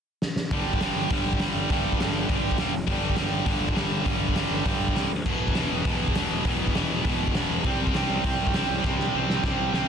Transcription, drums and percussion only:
0.22 snare medium
0.36 snare medium
0.51 kick loud
0.51 open hi-hat medium
0.73 kick medium
0.80 snare loud
0.80 open hi-hat medium
1.10 kick loud
1.10 open hi-hat medium
1.33 kick medium
1.39 snare loud
1.39 open hi-hat medium
1.70 kick loud
1.70 open hi-hat medium
1.92 kick medium
2.00 snare loud
2.00 open hi-hat medium
2.29 kick loud
2.29 open hi-hat medium
2.51 kick medium
2.58 snare loud
2.58 open hi-hat medium
2.88 kick medium
2.88 open hi-hat medium
3.10 kick medium
3.16 snare loud
3.16 open hi-hat medium
3.46 kick loud
3.46 open hi-hat medium
3.69 kick loud
3.76 snare loud
3.76 open hi-hat medium
4.06 kick loud
4.06 open hi-hat medium
4.28 kick medium
4.36 snare loud
4.36 open hi-hat medium
4.65 kick loud
4.65 open hi-hat medium
4.88 kick medium
4.96 snare loud
4.96 open hi-hat medium
5.26 kick loud
5.26 crash medium
5.48 kick medium
5.55 snare loud
5.55 open hi-hat medium
5.85 kick loud
5.85 open hi-hat medium
6.08 kick medium
6.15 snare loud
6.15 open hi-hat medium
6.45 kick loud
6.45 open hi-hat medium
6.67 kick medium
6.75 snare loud
6.75 open hi-hat medium
7.05 kick loud
7.05 open hi-hat medium
7.27 kick medium
7.35 snare loud
7.35 open hi-hat medium
7.64 kick loud
7.64 open hi-hat medium
7.87 kick medium
7.94 snare loud
7.94 open hi-hat medium
8.24 kick loud
8.24 open hi-hat medium
8.47 kick medium
8.54 snare loud
8.54 open hi-hat medium
8.84 kick loud
8.84 snare medium
9.00 snare medium
9.30 snare medium
9.44 kick loud
9.44 snare loud
9.74 snare loud

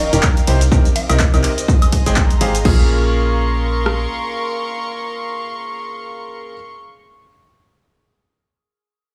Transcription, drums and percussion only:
0.13 closed hi-hat medium
0.13 shaker medium
0.23 kick loud
0.23 clap loud
0.23 shaker medium
0.37 closed hi-hat medium
0.37 shaker soft
0.47 open hi-hat medium
0.47 ride medium
0.61 closed hi-hat medium
0.61 shaker medium
0.72 kick loud
0.72 shaker medium
0.85 closed hi-hat soft
0.85 shaker soft
0.96 open hi-hat loud
0.96 ride medium
1.10 closed hi-hat medium
1.10 high woodblock medium
1.10 shaker medium
1.19 kick loud
1.19 clap loud
1.19 shaker medium
1.34 closed hi-hat soft
1.34 high woodblock medium
1.34 shaker soft
1.44 clap soft
1.44 open hi-hat medium
1.44 ride medium
1.58 closed hi-hat medium
1.58 shaker medium
1.68 kick loud
1.68 shaker medium
1.82 closed hi-hat medium
1.82 high woodblock medium
1.82 shaker soft
1.92 kick medium
1.92 open hi-hat loud
1.92 ride medium
2.06 closed hi-hat medium
2.06 shaker medium
2.16 kick loud
2.16 clap loud
2.16 shaker medium
2.30 closed hi-hat medium
2.30 shaker soft
2.41 open hi-hat medium
2.41 ride medium
2.55 closed hi-hat medium
2.55 shaker medium
2.65 kick loud
2.65 crash medium
3.86 cross-stick medium

